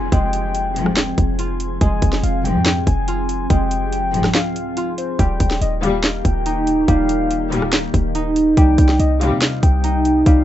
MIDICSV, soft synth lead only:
0, 0, Header, 1, 2, 480
1, 0, Start_track
1, 0, Key_signature, -4, "minor"
1, 0, Tempo, 422535
1, 137, Time_signature, 4, 2, 24, 8
1, 11862, End_track
2, 0, Start_track
2, 0, Title_t, "Soft synth lead"
2, 0, Program_c, 0, 80
2, 138, Note_on_c, 0, 79, 120
2, 1053, Note_off_c, 0, 79, 0
2, 2057, Note_on_c, 0, 80, 101
2, 2509, Note_off_c, 0, 80, 0
2, 2538, Note_on_c, 0, 77, 85
2, 2766, Note_off_c, 0, 77, 0
2, 2778, Note_on_c, 0, 79, 88
2, 3229, Note_off_c, 0, 79, 0
2, 3260, Note_on_c, 0, 80, 89
2, 3936, Note_off_c, 0, 80, 0
2, 3979, Note_on_c, 0, 79, 127
2, 4893, Note_off_c, 0, 79, 0
2, 4938, Note_on_c, 0, 77, 86
2, 5614, Note_off_c, 0, 77, 0
2, 5659, Note_on_c, 0, 72, 86
2, 5886, Note_off_c, 0, 72, 0
2, 5898, Note_on_c, 0, 79, 102
2, 6349, Note_off_c, 0, 79, 0
2, 6379, Note_on_c, 0, 75, 84
2, 6606, Note_off_c, 0, 75, 0
2, 6618, Note_on_c, 0, 77, 77
2, 7069, Note_off_c, 0, 77, 0
2, 7096, Note_on_c, 0, 79, 86
2, 7774, Note_off_c, 0, 79, 0
2, 7819, Note_on_c, 0, 77, 115
2, 8733, Note_off_c, 0, 77, 0
2, 9739, Note_on_c, 0, 79, 108
2, 10190, Note_off_c, 0, 79, 0
2, 10218, Note_on_c, 0, 75, 87
2, 10446, Note_off_c, 0, 75, 0
2, 10459, Note_on_c, 0, 77, 88
2, 10910, Note_off_c, 0, 77, 0
2, 10938, Note_on_c, 0, 79, 90
2, 11615, Note_off_c, 0, 79, 0
2, 11657, Note_on_c, 0, 77, 107
2, 11862, Note_off_c, 0, 77, 0
2, 11862, End_track
0, 0, End_of_file